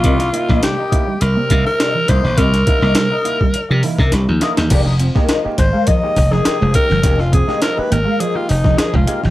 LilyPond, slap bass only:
\new Staff \with { instrumentName = "Slap bass" } { \clef bass \time 4/4 \key c \minor \tempo 4 = 103 c,8 r16 bes,,16 r4 c,16 r16 c16 r8. c,16 bes,,16 | c,8 r16 c,16 r4 r16 c16 r16 c16 c,16 dis,16 r16 dis,16 | f,,8. r8. aes,,16 r8. f,,8 r16 f,,16 r16 g,,16 | f,,8. r8. aes,,16 r8. f,,8 r16 f,,16 r16 aes,,16 | }